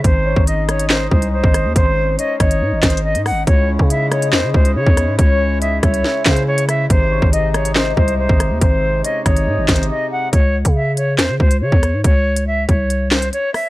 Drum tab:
HH |x-----------x-----x--x-----------x--------x-----|x-----------x-----x--x--------x-x-x----x--o-----|x-----------x-----x--x-----------x--------x-----|x-----------x-----x--x--------x--x-----x--x-----|
CP |------------------------x-----------------------|------------------------------x-----------------|------------------------x-----------------------|------------------------------x-----------------|
SD |------------------r-----o-----------------r-----|------------------r-----------o-----------r-----|------------------r-----o-----------------r-----|------------------r-----o-----o-----------r-----|
BD |o--------o--------------------o--------o--------|o-----------------o-----------o-----------------|o--------o--------------------o--------o--------|o-----------------o-----------o-----------------|

HH |x-----------x-----x--x-----------x--------x-----|x-----------x-----x--x--------x-x-x-------------|x--------x--------x-----x--------x--------x-----|x--------x--------x-----x--------x--x-----o-----|
CP |------------------------x-----------------------|------------------------------x-----------------|------------------------x-----------------------|------------------------------x-----------------|
SD |------------------r-----o-----------------r-----|------------------r-----------o-----------------|------------------------o-----------------r-----|------------------------------o-----------r-----|
BD |o--------o--------------------o--------o--------|o-----------------o-----------o-----------------|o--------o--------------------o--------o--------|o-----------------o-----------------------------|